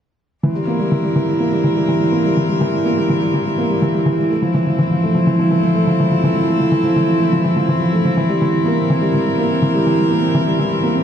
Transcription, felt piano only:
0.43 E3
0.55 G3
0.67 A#3
0.79 G3
0.92 E3
1.03 G3
1.16 E3
1.28 G3
1.40 A#3
1.52 G3
1.64 E3
1.76 G3
1.88 E3
2.01 G3
2.12 A#3
2.25 G3
2.37 E3
2.49 G3
2.61 E3
2.73 G3
2.85 A#3
2.97 G3
3.09 E3
3.21 G3
3.34 E3
3.46 G3
3.58 A#3
3.70 G3
3.82 E3
3.94 G3
4.06 E3
4.18 G3
4.30 A3
4.42 F3
4.54 E3
4.67 F3
4.79 E3
4.91 F3
5.03 A3
5.15 F3
5.27 E3
5.39 F3
5.51 E3
5.63 F3
5.75 A3
5.87 F3
6.00 E3
6.11 F3
6.24 E3
6.36 F3
6.48 A3
6.60 F3
6.72 E3
6.84 F3
6.96 E3
7.08 F3
7.20 A3
7.33 F3
7.44 E3
7.57 F3
7.68 E3
7.81 F3
7.93 A3
8.05 F3
8.17 E3
8.29 G3
8.41 E3
8.54 G3
8.65 A#3
8.78 C4
8.90 E3
9.02 G3
9.14 E3
9.26 G3
9.38 A#3
9.50 C4
9.62 E3
9.75 G3
9.87 E3
9.99 G3
10.10 A#3
10.22 C4
10.35 E3
10.47 G3
10.59 E3
10.71 G3
10.83 A#3
10.95 C4

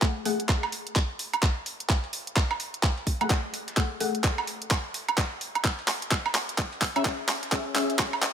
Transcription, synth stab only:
0.02 A3 G#4 F#5
0.25 A3 G#4 F#5
3.21 A3 G#4 F#5
3.77 A3 G#4 F#5
4.00 A3 G#4 F#5
6.96 C#4 G#4 E5
7.52 C#4 G#4 E5
7.75 C#4 G#4 E5

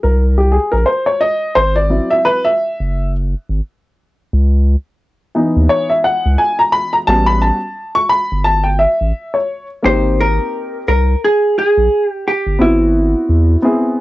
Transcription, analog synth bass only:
0.04 C2
0.73 A#1
1.57 G#1
2.80 F#1
3.49 G#1
4.33 C#2
5.57 D#2
6.26 C#2
7.08 A1
8.32 G1
9.01 A1
9.85 G#1
10.88 C2
11.78 A#1
12.47 G1
12.61 G#1
13.29 E2

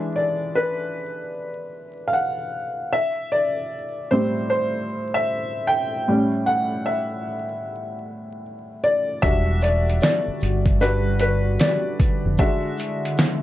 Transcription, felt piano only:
Already playing: E3 G#3 D4 E5
0.16 D5
0.55 B4
2.07 F5
2.13 F#5
2.92 E5
3.32 D5
4.11 A2 G3 C4 C5
4.50 C5
5.14 E5
5.67 G5
6.08 A2 G3 C#4
6.46 F#5
6.86 E5
8.84 D5
9.22 G3 D4 F#4 E5
9.62 D5
10.02 D5
10.81 G3 D4 F#4 B4
11.21 B4
11.60 D5
12.39 G#3 D4 F#4 E5

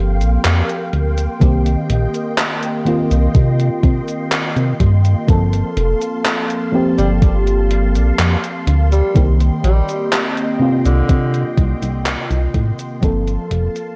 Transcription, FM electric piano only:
Already playing: F3 A#3 C4 G4
1.40 D#3 A#3 C4 G4
2.85 D#3 A#3 C4 F4
5.27 F3 A#3 C4 A4
6.72 F3 A#3 C4 G4
9.14 D#3 A#3 C4 G4
10.59 C3 A#3 C4 F4
13.01 F3 A#3 C4 A4

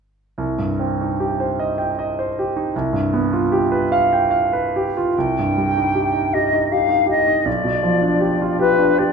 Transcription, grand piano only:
0.38 C2
0.58 G2
0.79 C4
1.01 D#4
1.20 G4
1.40 C5
1.59 D#5
1.78 G5
1.99 D#5
2.19 C5
2.39 G4
2.56 D#4
2.76 C2
2.93 G2
3.13 B3
3.33 F4
3.52 G4
3.72 B4
3.92 F5
4.13 G5
4.31 F5
4.53 B4
4.76 G4
4.97 F4
5.18 C2
5.39 G2
5.57 G3
5.77 D#4
5.95 G4
6.13 D#4
6.35 G4
6.53 D#4
6.72 G4
6.89 D#4
7.06 G4
7.27 D#4
7.45 B1
7.64 B2
7.83 F3
8.02 D4
8.20 G4
8.41 F4
8.59 G4
8.79 D4
8.99 G4

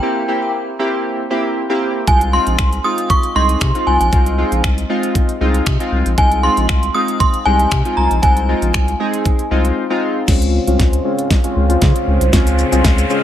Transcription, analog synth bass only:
2.08 C2
2.47 A#1
2.59 C2
3.36 C2
3.61 C3
3.87 C2
4.00 A#1
4.13 C2
4.52 A#1
4.64 C2
5.41 C2
5.67 C3
5.92 C2
6.06 A#1
6.18 C2
6.57 A#1
6.69 C2
7.46 C2
7.72 C3
7.97 C2
8.11 A#1
8.23 C2
8.62 A#1
8.75 C2
9.51 C2
10.28 C#2
10.67 C2
10.80 C#2
11.56 C#2
11.82 C#3
12.08 C#2
12.21 C2
12.33 C#2
12.72 C2
12.85 C#2

